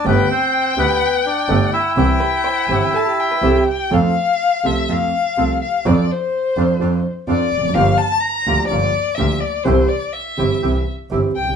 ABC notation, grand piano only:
X:1
M:4/4
L:1/16
Q:1/4=125
K:C
V:1 name="Grand piano" clef=bass
[G,,,G,,D,A,B,G]2 z4 [D,,D,A,B,G]2 z4 [G,,,G,,D,A,B,G]2 z2 | [C,,C,E,G,CG]2 z4 [G,,,G,,E,G,CG]2 z4 [C,,C,E,G,CG]2 z2 | [K:F] [F,,F,A,CA]2 z4 [C,,C,F,A,CA]2 [F,,F,A,C]2 z2 [C,,C,F,A,CA]2 z2 | [F,,F,CDA]2 z4 [F,,F,CDA]2 [F,,F,CDA]2 z2 [F,,F,CDA]2 z/2 E,,/2 F,,/2 _G,,/2 |
[G,,,G,,F,B,DG]2 z4 [D,,D,F,B,DG]2 [G,,,G,,F,B,DG]2 z2 [D,,D,F,B,DG]2 z2 | [C,,C,E,G,CG]2 z4 [G,,,G,,E,G,CG]2 [C,,C,E,G,CG]2 z2 [G,,,G,,E,G,CG]2 z/2 =B,,,/2 C,,/2 z/2 |]